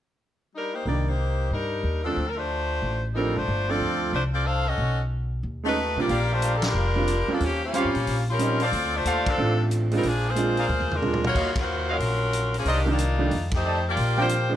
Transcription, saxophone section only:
0.55 G3 D4 D#4 A#4
0.74 A#3 D#4 G4 C5
0.86 A#3 D#4 G4 D5
1.07 A#3 D#4 G4 C5
1.51 G3 D4 D#4 A#4
2.04 F3 C4 D4 A4
2.28 A#4
2.36 A3 D4 F4 C5
3.14 G3 C4 D#4 A#4
3.36 A3 D4 F4 C5
3.69 C4 F4 A4 D5
4.13 A3 D4 F4 C5
4.33 C4 F4 A4 D5
4.45 D4 A4 C5 F5
4.68 C#4 F#4 A4 D#5
5.66 A3 D#4 F#4 B4
5.99 A#3 F4 G4 D5
6.33 A3 D4 F4 C5
6.55 A4
6.67 G3 D4 F4 A#4
7.32 F3 A#3 D4 A4
7.44 F3 A#3 C#4 G4
7.64 G3 A#3 C#4 F4
8.30 G3 C#4 F4 A#4
8.63 C4 F4 A4 D5
8.96 A3 D4 F4 C5
9.29 F3 C4 D4 A4
9.96 G3 C4 D#4 A#4
10.07 F3 A#3 D4 G#4
10.29 A#3 F4 G#4 C5
10.94 G#3 D4 F4 A#4
11.27 A#3 F4 F#4 C#5
11.61 A#3 F4 F#4 C5
11.92 F#3 C#4 F4 A#4
12.58 F3 A#3 C#4 G#4
12.70 D#3 A#3 D4 G4
12.91 A#3 D4 D#4 F4
13.55 A3 D#4 G4 C5
13.89 A#3 F4 G4 D5
14.20 A#3 F4 G4 C5

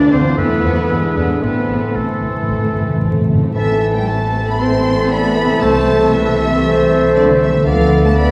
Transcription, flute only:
Already playing: D6
0.37 E6
0.90 E6
1.42 C6
4.60 C5
5.11 D5
5.38 E5
5.63 C5
6.15 B4
6.41 A4
6.65 C5
7.67 A4
8.19 D5

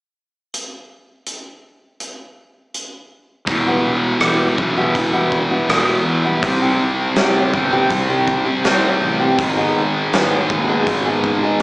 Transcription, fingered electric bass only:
3.48 E1
3.85 E1
4.21 E1
4.58 B1
4.95 E1
5.69 E1
6.05 E2
6.43 C2
6.79 C2
7.17 C2
7.53 G1
7.90 C2
8.65 C2
9.01 A1
9.39 G#1
9.76 G#1
10.13 G#1
10.50 D#2
10.87 G#1

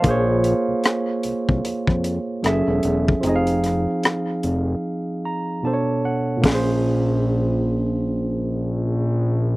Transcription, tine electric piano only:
Already playing: F5
0.02 A#3 F4
0.06 G#4 C5
0.11 C#5
2.43 F#3 C#4 G#4 A4
2.47 E5
3.21 F3 C4
3.25 D#4 G#4
3.29 D#5
3.36 F5
5.25 A#5
5.63 B2 B3 D4 A4 A5
5.67 C5
5.74 C#5
6.05 F#5
6.37 A#2
6.41 A#3
6.46 C#4
6.50 G#4
6.55 C5

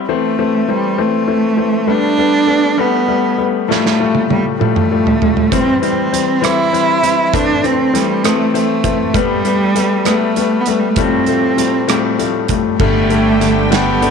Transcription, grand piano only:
0.09 E3 A3 C4
0.39 E3 A3 C4
0.68 E3 A3 C4
0.98 E3 A3 C4
1.27 E3 A3 C4
1.57 E3 A3 C4
1.87 G3 A3 B3
2.18 G3 A3 B3
2.47 G3 A3 B3
2.77 G3 A3 B3
3.08 G3 A3 B3
3.38 G3 A3 B3
3.68 A2 F3 G3 A3
3.99 A2 F3 G3 A3
4.30 A2 F3 G3 A3
4.60 A2 F3 G3 A3
4.91 A2 F3 G3 A3
5.21 A2 F3 G3 A3
5.52 E3 G3 C4
5.82 E3 G3 C4
6.12 E3 G3 C4
6.42 E3 G3 C4
6.73 E3 G3 C4
7.03 E3 G3 C4
7.33 E3 A3 C4
7.63 E3 A3 C4
7.93 E3 A3 C4
8.24 E3 A3 C4
8.53 E3 A3 C4
8.84 E3 A3 C4
9.14 G3 A3 B3
9.44 G3 A3 B3
9.75 G3 A3 B3
10.05 G3 A3 B3
10.37 G3 A3 B3
10.67 G3 A3 B3
10.97 A2 F3 G3 A3
11.27 A2 F3 G3 A3
11.57 A2 F3 G3 A3
11.88 A2 F3 G3 A3
12.18 A2 F3 G3 A3
12.49 A2 F3 G3 A3
12.80 D3 G3 A3
13.09 D3 G3 A3
13.41 D3 G3 A3
13.71 D3 G3 A3
14.02 D3 G3 A3

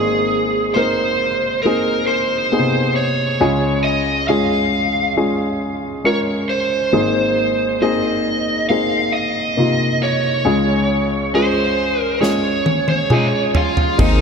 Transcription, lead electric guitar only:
Already playing: G#4
0.74 C5
1.62 A#4
2.07 C5
2.96 C#5
3.84 D#5
4.28 F5
6.07 C#5
6.49 C5
7.82 D#5
8.69 F5
9.13 D#5
10.03 C#5
11.35 C5
12.00 A#4
12.22 C#5
12.89 C#5
13.12 D#4 D#5
13.56 F4 F5
14.01 D#4 D#5

